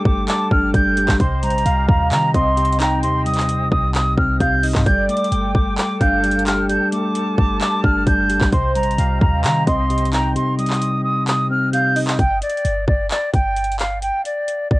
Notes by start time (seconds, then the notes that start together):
Already playing: G3 A3 D4 G4 A4 G5
0.05 G1 D6, kick
0.28 G3 A5 D6, clap, closed hi-hat
0.51 G1 D4 F6, kick
0.74 G1 G3 G6, kick, closed hi-hat
0.97 G4, closed hi-hat
1.08 G1, kick, clap
1.20 C2 C3 C4 C5 D#5 C6, kick, closed hi-hat
1.43 A#1 G3 A#5, closed hi-hat
1.50 closed hi-hat
1.58 closed hi-hat
1.66 C2 F5, closed hi-hat
1.89 D#2 A#5, kick
2.11 C3 D#3 A#5, clap, closed hi-hat
2.34 C2 C4 D#5 C6, kick, closed hi-hat
2.57 C3, closed hi-hat
2.65 closed hi-hat
2.73 closed hi-hat
2.80 D#4 G5 A#5, clap, closed hi-hat
3.03 D#2 C3 C6, closed hi-hat
3.26 G3 D#6, closed hi-hat
3.34 clap, closed hi-hat
3.41 closed hi-hat
3.49 closed hi-hat
3.71 C2 D#6, kick
3.95 C3 D#6, clap, closed hi-hat
4.18 C2 C4 F6, kick
4.40 C2 C3 F5 G6, kick, closed hi-hat
4.63 D#4 D#5, open hi-hat
4.75 G2, kick, clap
4.86 G1 G3 G4 A4 D5 G5 G6, kick, closed hi-hat
5.09 A3 D6, closed hi-hat
5.17 closed hi-hat
5.24 closed hi-hat
5.32 G1 G5, closed hi-hat
5.54 G1 D6, kick
5.78 G3 D6, clap, closed hi-hat
6.01 G1 D4 F5 G6, kick, closed hi-hat
6.24 G3, closed hi-hat
6.31 closed hi-hat
6.39 closed hi-hat
6.46 G4 G5 F6, clap, closed hi-hat
6.69 G3 A5 G6, closed hi-hat
6.92 A3 D6, closed hi-hat
7.15 closed hi-hat
7.38 G1 D6, kick
7.61 G3 A5 D6, clap, closed hi-hat
7.84 G1 D4 F6, kick
8.07 G1 G3 G6, kick, closed hi-hat
8.30 G4, closed hi-hat
8.41 G1, kick, clap
8.52 C2 C3 C4 C5 D#5 C6, kick, closed hi-hat
8.75 A#1 G3 A#5, closed hi-hat
8.83 closed hi-hat
8.91 closed hi-hat
8.98 C2 F5, closed hi-hat
9.21 D#2 A#5, kick
9.44 C3 D#3 A#5, clap, closed hi-hat
9.67 C2 C4 D#5 C6, kick, closed hi-hat
9.90 C3, closed hi-hat
9.98 closed hi-hat
10.05 closed hi-hat
10.13 D#4 G5 A#5, clap, closed hi-hat
10.36 C3 C6, closed hi-hat
10.59 G3 D#6, closed hi-hat
10.66 clap, closed hi-hat
10.74 closed hi-hat
10.82 closed hi-hat
11.04 D#6
11.27 C3 D#6, clap, closed hi-hat
11.50 C4 F6
11.73 C3 F5 G6, closed hi-hat
11.96 D#4 D#5, open hi-hat
12.07 clap
12.19 G1 G5, kick, closed hi-hat
12.42 D5, closed hi-hat
12.50 closed hi-hat
12.57 closed hi-hat
12.65 G1, closed hi-hat
12.87 G1 D5, kick
13.11 D5, clap, closed hi-hat
13.34 G1 G5, kick, closed hi-hat
13.57 closed hi-hat
13.64 closed hi-hat
13.72 closed hi-hat
13.79 F5, clap, closed hi-hat
14.02 G5, closed hi-hat
14.25 D5, closed hi-hat
14.48 closed hi-hat
14.71 G1 D5, kick